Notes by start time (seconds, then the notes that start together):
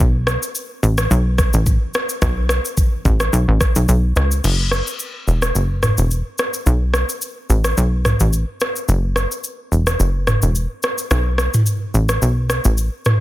0.00 B1, kick, shaker
0.27 cross-stick, shaker
0.43 shaker
0.55 shaker
0.83 A1, shaker
0.98 cross-stick, shaker
1.11 B1, shaker
1.38 kick, cross-stick, shaker
1.53 A1, shaker
1.66 kick, shaker
1.94 cross-stick, shaker
2.09 shaker
2.22 B1, kick, cross-stick, shaker
2.49 cross-stick, shaker
2.65 shaker
2.77 kick, shaker
3.05 A1, kick, shaker
3.20 cross-stick, shaker
3.33 B1, shaker
3.48 A1
3.61 kick, cross-stick, shaker
3.76 B1, shaker
3.89 B1, shaker
4.16 C#2, cross-stick, shaker
4.32 shaker
4.44 F#1, crash, shaker
4.71 cross-stick, shaker
4.87 shaker
5.00 shaker
5.28 E1, shaker
5.42 cross-stick, shaker
5.55 F#1, shaker
5.83 cross-stick, mid tom, shaker
5.98 E1, shaker
6.11 shaker
6.38 cross-stick, shaker
6.54 shaker
6.66 B1, shaker
6.94 cross-stick, shaker
7.09 shaker
7.22 shaker
7.50 A1, shaker
7.64 cross-stick, shaker
7.78 B1, shaker
8.05 cross-stick, mid tom, shaker
8.20 A1, shaker
8.33 shaker
8.61 cross-stick, shaker
8.76 shaker
8.89 F#1, shaker
9.16 cross-stick, shaker
9.32 shaker
9.44 shaker
9.72 E1, shaker
9.87 cross-stick, shaker
10.00 F#1, shaker
10.27 cross-stick, mid tom, shaker
10.42 E1, shaker
10.55 shaker
10.83 cross-stick, shaker
10.98 shaker
11.11 B1, cross-stick, shaker
11.38 cross-stick, shaker
11.54 mid tom, shaker
11.66 shaker
11.94 A1, shaker
12.09 cross-stick, shaker
12.22 B1, shaker
12.50 cross-stick, shaker
12.65 A1, shaker
12.78 shaker
13.05 cross-stick, mid tom, shaker